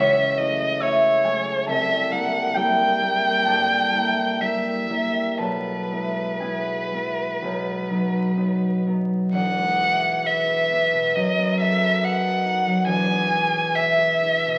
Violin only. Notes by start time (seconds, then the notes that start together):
Already playing: E5
0.37 D#5
0.83 C#5
1.70 E5
2.12 F#5
2.56 G5
4.41 E5
5.38 B4
9.34 F#5
10.26 E5
11.15 D#5
11.60 E5
12.04 F#5
12.87 G#5
13.76 E5